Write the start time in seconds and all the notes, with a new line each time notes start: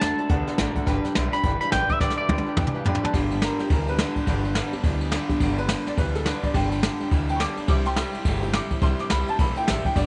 Already playing: A5
0.00 E2 D3 A3 D4 F#4 A4 D5 E5, snare, closed hi-hat
0.18 D4 F#4 A4 D5 A5, muted upright bass stroke, closed hi-hat
0.29 D2 D3 A3 B3 D4 F#4 A4 D5 F#5, kick, closed hi-hat
0.46 D4 F#4 A4 D5 F#5, muted upright bass stroke, snare, closed hi-hat
0.58 A1 D3 A3 D4 F#4 A4 D5 F#5, snare, closed hi-hat
0.75 D4 F#4 A4 D5 F#5, muted upright bass stroke, kick, closed hi-hat
0.86 G1 G2 D3 G3 D4 G4 B4 D5 G5, kick, snare, closed hi-hat
1.03 G3 D4 G4 B4 D5 G5, muted upright bass stroke, snare, closed hi-hat
1.15 B1 G2 D3 G3 D4 G4 B4 D5 E5, snare, closed hi-hat
1.32 G3 D4 G4 B4 D5 G5 B5, muted upright bass stroke, snare, closed hi-hat
1.43 G1 G2 E3 G3 D4 G4 B4 D5 G5, kick, closed hi-hat
1.61 G3 D4 G4 B4 D5 F5 B5, muted upright bass stroke, snare, closed hi-hat
1.72 A1 G2 D3 G3 D4 G4 B4 D5 G5, snare, closed hi-hat
1.89 G3 D4 G4 B4 D5 E5, muted upright bass stroke, kick, closed hi-hat
2.00 B1 G2 D3 G3 D4 G4 B4 D5 G5, kick, snare
2.10 snare
2.18 G3 D4 G4 B4 D5 E5, muted upright bass stroke
2.28 D2 G2 D3 G3 D4 G4 B4 G5, high tom
2.38 high tom
2.46 G3 D4 G4 B4 D5 G5, muted upright bass stroke
2.56 E2 G2 E3 G3 D4 G4 B4 D5 G5, kick, mid tom
2.67 mid tom
2.74 G3 D4 G4 B4 D5 F5, muted upright bass stroke
2.84 F2 G2 D3 G3 D4 G4 B4 D5 G5, floor tom
2.95 floor tom
3.02 G3 D4 G4 B4 D5 A5, muted upright bass stroke, floor tom
3.14 G1 G2 D3 G3 B3 D4 G4, kick, snare, ride
3.30 G3 B3 D4 G4, ride
3.41 G2 D3 G3 B3 D4 G4 A#4, snare, ride
3.59 G3 B3 D4 G4, muted upright bass stroke, snare, ride
3.70 D2 G2 E3 G3 B3 D4 G4 A#4, kick, ride
3.87 G3 B3 D4 G4 B4, ride
3.98 G2 D3 G3 B3 D4 G4, snare, ride
4.16 G3 B3 D4 G4, muted upright bass stroke, kick, ride
4.27 G1 G2 D3 G3 B3 D4 G4, kick, snare, ride
4.44 G3 B3 D4 G4, ride
4.55 G2 D3 G3 B3 D4 G4, snare, ride
4.72 G3 B3 D4 G4, muted upright bass stroke, ride
4.83 D2 G2 E3 G3 B3 D4 G4, kick, ride
5.01 G3 B3 D4 G4, ride
5.12 G2 D3 G3 B3 D4 G4, snare, ride
5.29 G3 B3 D4 G4, muted upright bass stroke, kick, ride
5.33 G3
5.40 G1 G2 D3 G3 B3 D4 G4, kick, ride
5.58 G3 B3 D4 G4 B4, ride
5.69 G2 D3 G3 B3 D4 G4, snare, ride
5.87 G3 B3 D4 G4 D5, muted upright bass stroke, snare, ride
5.97 D2 G2 E3 G3 B3 D4 G4 B4, kick, ride
6.15 G3 B3 D4 G4 A4, snare, ride
6.26 G2 D3 G3 B3 D4 G4 B4, snare, ride
6.43 G3 B3 D4 G4 D5, muted upright bass stroke, kick, ride
6.53 G1 G2 D3 G3 B3 D4 G4 G5, kick, ride
6.71 G3 B3 D4 G4, ride
6.82 G2 D3 G3 B3 D4 G4, snare, ride
7.00 G3 B3 D4 G4, muted upright bass stroke, ride
7.11 D2 G2 E3 G3 B3 D4 G4, kick, ride
7.28 G3 B3 D4 G4 G5, ride
7.36 G2 D3 C#6, snare, ride
7.40 G3 B3 D4 G4 D6
7.56 G3 B3 D4 G4, muted upright bass stroke, ride
7.67 C2 C3 G3 C4 E4 G4 D6, kick, ride
7.85 C4 E4 G4 G5 C6, snare, ride
7.96 C3 G3 C4 E4 G4, snare, ride
8.14 C4 E4 G4, muted upright bass stroke, ride
8.25 G1 C3 G3 A3 C4 E4 G4, kick, ride
8.42 G3 C4 E4 G4, ride
8.53 C3 G3 C4 E4 G4 D6, snare, ride
8.70 C4 E4 G4, muted upright bass stroke, kick, ride
8.81 C2 C3 G3 C4 E4 G4 C6, kick, ride
8.99 C4 E4 G4 D6, muted upright bass stroke, snare, ride
9.10 C2 C3 G3 C4 E4 G4 B5, snare, ride
9.27 C4 E4 G4 A5, muted upright bass stroke, ride
9.38 B1 C3 G3 A3 C4 E4 G4 B5, kick, ride
9.56 C4 E4 G4 G5, muted upright bass stroke, ride
9.68 A1 C3 G3 C4 E4 G4 E5, snare, ride
9.85 C4 E4 G4 G5, muted upright bass stroke, kick, ride
9.95 G1 G2 D3 G3 B3 D4 G4 D5, kick, snare, ride